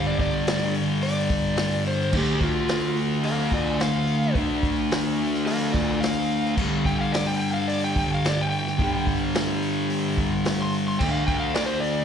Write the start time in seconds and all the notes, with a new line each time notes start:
Already playing: G2 D3 G3
0.07 D5
0.19 D5, kick, open hi-hat
0.47 snare, open hi-hat
0.74 open hi-hat
1.02 D5, open hi-hat
1.30 kick, open hi-hat
1.57 snare, open hi-hat
1.85 C5, open hi-hat
2.00 snare
2.13 D3 A3, kick, crash
2.17 D4 G4
2.41 F4, kick, open hi-hat
2.68 snare, open hi-hat
2.96 open hi-hat
3.23 A4 F5, open hi-hat
3.52 F4 D5, kick, open hi-hat
3.80 F5, snare, open hi-hat
4.07 open hi-hat
4.35 D3 A3 D4, kick, open hi-hat
4.63 kick, open hi-hat
4.91 snare, open hi-hat
5.20 open hi-hat
5.35 snare
5.46 A4 F5, open hi-hat
5.72 F4 D5, kick, open hi-hat
6.01 F5, snare, open hi-hat
6.30 open hi-hat
6.45 snare
6.57 G2 D3 G3, kick, crash
6.85 G5, kick, open hi-hat
7.01 F5
7.12 D5, snare, open hi-hat
7.27 G5
7.40 G5, open hi-hat
7.53 F5
7.68 D5, open hi-hat
7.84 G5
7.96 G5, kick, open hi-hat
8.14 F5
8.25 snare, open hi-hat
8.29 D5
8.41 G5
8.50 G5, open hi-hat
8.67 snare
8.79 G2 D3 G3, kick, open hi-hat
9.07 kick, open hi-hat
9.35 snare, open hi-hat
9.62 open hi-hat
9.90 open hi-hat
10.18 kick, open hi-hat
10.45 snare, open hi-hat
10.62 C6
10.73 open hi-hat
10.88 C6
10.99 D3 G5, kick, crash
11.03 A3 D4
11.11 F5
11.27 G5, kick, open hi-hat
11.40 F5
11.54 D5, snare, open hi-hat
11.66 C5
11.80 D5, open hi-hat